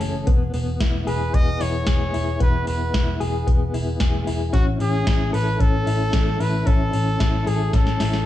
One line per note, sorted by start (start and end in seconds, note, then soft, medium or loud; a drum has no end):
0.00 0.23 F#1 medium
0.00 1.64 E3 medium
0.00 0.27 A3 medium
0.00 0.33 C#4 medium
0.00 0.33 A4 medium
0.00 open hi-hat medium
0.27 0.49 E1 loud
0.27 0.53 B3 medium
0.27 kick loud
0.27 closed hi-hat medium
0.54 0.76 E1 medium
0.54 1.33 B3 medium
0.54 open hi-hat medium
0.80 1.02 E1 loud
0.80 1.60 E4 medium
0.80 kick loud
0.80 snare loud
0.80 closed hi-hat medium
1.07 1.29 E1 medium
1.07 1.86 G#4 medium
1.07 1.36 B4 loud
1.07 open hi-hat medium
1.34 1.56 E1 loud
1.34 2.39 B3 medium
1.34 1.63 D#5 loud
1.34 kick loud
1.34 closed hi-hat medium
1.60 1.83 E1 medium
1.60 2.13 E4 medium
1.60 2.41 C#5 loud
1.60 open hi-hat medium
1.87 2.09 E1 medium
1.87 3.19 G#4 medium
1.87 kick loud
1.87 snare loud
1.87 closed hi-hat medium
2.14 2.36 E1 medium
2.14 2.93 E4 medium
2.14 open hi-hat medium
2.40 2.63 E1 loud
2.40 2.66 B3 medium
2.40 2.66 B4 loud
2.40 kick loud
2.40 closed hi-hat medium
2.67 2.89 E1 medium
2.67 3.46 B3 medium
2.67 3.17 B4 medium
2.67 open hi-hat medium
2.94 3.16 E1 loud
2.94 3.74 E4 medium
2.94 kick loud
2.94 snare loud
2.94 closed hi-hat medium
3.20 3.42 E1 medium
3.20 3.99 G#4 medium
3.20 open hi-hat medium
3.47 3.69 E1 loud
3.47 4.53 B3 medium
3.47 kick loud
3.47 closed hi-hat medium
3.74 3.96 E1 medium
3.74 4.26 E4 medium
3.74 open hi-hat medium
4.00 4.22 E1 medium
4.00 4.59 G#4 medium
4.00 kick loud
4.00 snare loud
4.00 closed hi-hat medium
4.27 4.49 E1 loud
4.27 5.06 E4 medium
4.27 open hi-hat medium
4.53 4.76 A1 loud
4.53 4.80 C#4 medium
4.53 4.65 F#4 loud
4.53 kick loud
4.53 closed hi-hat medium
4.80 5.02 A1 medium
4.80 5.59 C#4 medium
4.80 5.30 G#4 loud
4.80 open hi-hat medium
5.06 5.29 A1 loud
5.06 5.86 E4 medium
5.06 kick loud
5.06 snare loud
5.06 closed hi-hat medium
5.33 5.56 A1 medium
5.33 6.12 A4 medium
5.33 5.62 B4 loud
5.33 open hi-hat medium
5.59 5.82 A1 loud
5.59 6.66 C#4 medium
5.59 6.42 A4 loud
5.59 kick loud
5.59 closed hi-hat medium
5.86 6.09 A1 medium
5.86 6.40 E4 medium
5.86 open hi-hat medium
6.13 6.36 A1 medium
6.13 7.46 A4 medium
6.13 kick loud
6.13 snare loud
6.13 closed hi-hat medium
6.40 6.62 A1 medium
6.40 7.20 E4 medium
6.40 6.68 B4 medium
6.40 open hi-hat medium
6.66 6.89 A1 loud
6.66 6.93 C#4 medium
6.66 7.49 A4 loud
6.66 kick loud
6.66 closed hi-hat medium
6.93 7.16 A1 medium
6.93 7.73 C#4 medium
6.93 open hi-hat medium
7.20 7.42 A1 loud
7.20 8.00 E4 medium
7.20 kick loud
7.20 snare loud
7.20 closed hi-hat medium
7.47 7.69 A1 medium
7.47 7.73 G#4 medium
7.47 8.26 A4 medium
7.47 open hi-hat medium
7.73 7.96 A1 medium
7.73 8.26 C#4 medium
7.73 8.26 A4 medium
7.73 kick loud
7.73 snare medium
7.73 closed hi-hat medium
7.87 snare soft
8.00 8.23 A1 medium
8.00 8.26 E4 medium
8.00 snare medium
8.00 open hi-hat medium
8.13 snare medium